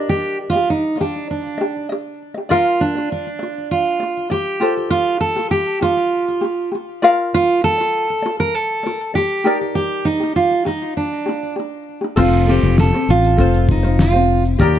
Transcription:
Already playing: G4 A#4 D5 D#5
0.09 G4
0.50 F4 D#5
0.56 G4
0.70 D#4
0.97 D4 G4 D#5
1.31 D4
1.58 G4 D#5
1.89 G4 D#5
2.34 G4 D#5
2.49 F4 A#4 D5 F5
2.81 D4
2.95 F4 D5
3.12 D4
3.39 F4 D5
3.71 F4
4.00 F4 D5
4.30 F4 G4 D5
4.60 F4 G4 A4 C5
4.90 F4
5.21 A4
5.36 F4 G4
5.51 G4
5.81 F4 G4
6.41 F4 G4
6.72 F4 G4
7.02 F4 A#4 D5 F5
7.34 F4
7.64 A4
7.77 F4 D5
8.22 F4 D5
8.40 A#4
8.55 A4
8.83 F4 D5
9.14 F4 G4 D5
9.44 D#4 G4 A#4 D5
9.75 G4
10.05 D#4
10.20 D#4 G4
10.36 F4
10.65 D#4 G4
10.97 D4
11.26 D#4 G4
11.56 D#4 G4
12.01 D#4 G4
12.16 F1 C4 F4 A4 C5, kick, crash, shaker
12.32 shaker
12.47 C4 F4 G4 A4 C5, shaker
12.63 F1, shaker
12.78 A4, snare, shaker
12.92 C4 C5, shaker
13.08 A1 F4, shaker
13.24 shaker
13.37 F1 C4 F4 A4 C5, kick, shaker
13.54 shaker
13.68 D#4, kick, shaker
13.83 C4 F4 C5, shaker
13.99 F4, snare, shaker
14.12 C4 C5, shaker
14.30 shaker
14.45 shaker
14.58 D#2 D#4 G4 A#4 D5, kick, shaker
14.74 shaker

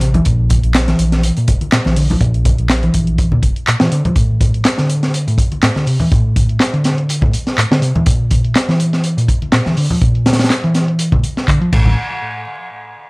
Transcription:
Already playing: A1
0.01 C3, closed hi-hat
0.14 E3, closed hi-hat, high conga, low conga
0.25 A#1 A#2, kick, closed hi-hat
0.50 kick, closed hi-hat, high conga
0.63 A#1, closed hi-hat
0.74 snare, clap, closed hi-hat
0.88 E3, snare, closed hi-hat
0.99 A#1, closed hi-hat
1.12 snare, closed hi-hat
1.23 closed hi-hat
1.37 A#2, closed hi-hat
1.48 F1, kick, closed hi-hat
1.61 closed hi-hat, high conga
1.72 A#2, snare, clap, closed hi-hat
1.85 A#1 E3, snare, high conga
1.96 D3, closed hi-hat, open hi-hat
2.10 F3, closed hi-hat, low conga
2.21 A#1 A#2, kick, closed hi-hat
2.34 closed hi-hat
2.45 kick, closed hi-hat, high conga
2.58 A#1, closed hi-hat
2.70 snare, clap, closed hi-hat
2.83 E3, closed hi-hat
2.94 A#1, kick, closed hi-hat
3.07 closed hi-hat
3.18 kick, closed hi-hat
3.32 A#2, high conga, low conga
3.43 F1, kick, closed hi-hat
3.56 closed hi-hat
3.67 A#2, clap, closed hi-hat
3.80 A#2 E3, snare
3.92 D3, closed hi-hat
4.05 F3, closed hi-hat, high conga, low conga
4.16 A2, kick, closed hi-hat
4.40 kick, closed hi-hat, high conga
4.54 closed hi-hat
4.65 snare, clap, closed hi-hat
4.78 D3, snare, closed hi-hat
4.90 closed hi-hat
5.03 snare, closed hi-hat
5.14 closed hi-hat
5.27 A2, closed hi-hat
5.38 kick, closed hi-hat
5.52 closed hi-hat, high conga
5.62 A2, snare, clap, closed hi-hat
5.76 D3, snare, high conga
5.87 C3, closed hi-hat, open hi-hat
6.00 E3, closed hi-hat, low conga
6.11 A2, kick, closed hi-hat
6.36 kick, closed hi-hat, high conga
6.49 closed hi-hat
6.60 snare, clap, closed hi-hat
6.73 D3, closed hi-hat
6.84 snare, closed hi-hat
6.98 closed hi-hat
7.09 closed hi-hat
7.21 A2, kick, high conga, low conga
7.33 closed hi-hat
7.47 snare, closed hi-hat
7.58 A2, clap, closed hi-hat
7.71 D3, snare
7.82 C3, closed hi-hat
7.95 E3, closed hi-hat, high conga, low conga
8.06 A#2, kick, closed hi-hat
8.31 kick, closed hi-hat, high conga
8.44 closed hi-hat
8.55 snare, clap, closed hi-hat
8.68 E3, snare, closed hi-hat
8.80 closed hi-hat
8.93 snare, closed hi-hat
9.04 closed hi-hat
9.17 A#2, closed hi-hat
9.28 kick, closed hi-hat
9.42 closed hi-hat, high conga
9.52 A#2, snare, clap, closed hi-hat
9.66 E3, snare, high conga
9.77 D3, closed hi-hat, open hi-hat
9.90 F3, closed hi-hat, low conga
10.01 A#2, kick, closed hi-hat
10.15 closed hi-hat
10.26 snare, closed hi-hat, high conga
10.33 snare, closed hi-hat
10.39 snare, closed hi-hat
10.44 snare, closed hi-hat
10.50 snare, clap, closed hi-hat
10.64 E3, closed hi-hat
10.74 snare, closed hi-hat
10.88 closed hi-hat
10.99 closed hi-hat
11.12 A#2, kick, closed hi-hat, high conga, low conga
11.23 closed hi-hat
11.37 snare, closed hi-hat
11.48 D3, kick, clap, closed hi-hat
11.61 F3, closed hi-hat
11.72 A1 A2, kick, crash
11.86 high conga, low conga

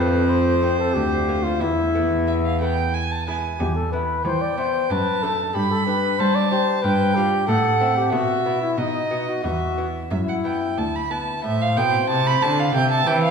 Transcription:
Already playing: F2 A3 C4 B4 C5
0.00 F4
0.29 C5
0.62 A3 C4 F4
0.79 A4
0.94 D2 G4
1.28 A#3 F4
1.43 F4
1.60 E2 E4 E5
1.94 A3 B3 E4
2.27 E5
2.45 F5
2.61 A3 B3 E4 G5
2.94 G#5
3.12 A5
3.27 G#3 B3 E4 G#5
3.59 E2 G4
3.76 A4
3.92 B3 E4 B4
4.25 E3 C5 G5
4.42 D5
4.57 B3 E4 C5
4.90 F#2 B4 A5
5.23 A3 D4 A4
5.55 G2 G4 B5
5.71 A4
5.87 D4 G4 B4
6.19 G3 C5 A5
6.35 D5
6.51 D4 G4 C5
6.83 G2 B4 G5
7.15 D4 F4 G4
7.47 A2 A4 F#5
7.80 A3 C4 E4
7.97 G4
8.12 B2 F#4 E5
8.46 B3 E4
8.62 E4
8.77 B2 D#4 D#5
9.11 B3 F#4
9.29 F#4
9.43 E2 F#4 E5
9.78 B3 E4
10.11 F#2 E4 E5
10.28 F#5
10.44 B3 E4 G5
10.78 D2 A5
10.96 B5
11.11 B3 E4 A5
11.43 A2 C5 E5
11.62 F5
11.76 B2 A3 C4 E4 G5
12.09 C3 A5
12.27 B5
12.41 D3 A3 C4 E4 A5
12.59 F5
12.74 C3 E5 G5
12.91 A5
13.06 E3 C4 E4 G5
13.23 F5

